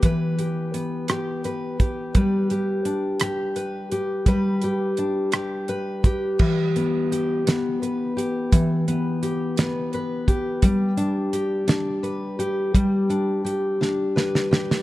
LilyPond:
<<
  \new Staff \with { instrumentName = "Steel-string acoustic guitar" } { \time 6/8 \key e \dorian \tempo 4. = 57 <e b g' b'>8 g'8 b8 g'8 b'8 g'8 | <g b'>8 g'8 d'8 g'8 b'8 g'8 | <g b'>8 g'8 d'8 g'8 b'8 g'8 | e8 b8 g'8 b8 b'8 g'8 |
e8 b8 g'8 b8 b'8 g'8 | g8 d'8 g'8 d'8 b'8 g'8 | g8 d'8 g'8 d'8 b'8 g'8 | }
  \new DrumStaff \with { instrumentName = "Drums" } \drummode { \time 6/8 <hh bd>8 hh8 hh8 <hh ss>8 hh8 <hh bd>8 | <hh bd>8 hh8 hh8 <hh ss>8 hh8 hh8 | <hh bd>8 hh8 hh8 <hh ss>8 hh8 <hh bd>8 | <cymc bd>8 hh8 hh8 <hh sn>8 hh8 hh8 |
<hh bd>8 hh8 hh8 <hh sn>8 hh8 <hh bd>8 | <hh bd>8 hh8 hh8 <hh sn>8 hh8 hh8 | <hh bd>8 hh8 hh8 sn8 sn16 sn16 sn16 sn16 | }
>>